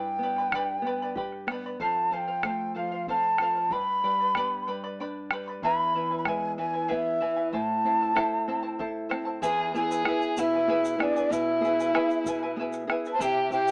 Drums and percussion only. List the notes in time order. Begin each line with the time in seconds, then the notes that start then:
0.36 bombo rim
0.52 bombo rim, bombo low
0.85 bombo rim
1.16 bombo low
1.32 bombo rim
1.48 bombo rim
1.80 bombo rim, bombo low
2.43 bombo rim, bombo low
2.76 bombo rim
3.07 bombo low
3.38 bombo rim
3.70 bombo rim, bombo low
4.35 bombo rim, bombo low
4.67 bombo rim
5.31 bombo rim
5.62 bombo rim, bombo low
6.25 bombo rim, bombo low
6.58 bombo rim
6.91 bombo low
7.54 bombo low
7.70 bombo rim
8.01 bombo rim
8.17 bombo rim, bombo low
8.48 bombo rim
8.79 bombo low
9.11 bombo rim
9.42 bombo rim, bombo low, shaker
9.75 shaker
9.91 shaker
10.05 bombo rim
10.22 shaker
10.37 bombo low, shaker
10.53 bombo rim
10.85 bombo rim, shaker
11.00 bombo rim
11.16 shaker
11.32 bombo rim, bombo low, shaker
11.64 shaker
11.80 shaker
11.95 bombo rim
12.10 shaker
12.26 bombo low, shaker
12.42 bombo rim
12.73 bombo rim, shaker
12.90 bombo rim
13.05 shaker
13.20 bombo rim, bombo low, shaker
13.52 shaker
13.68 shaker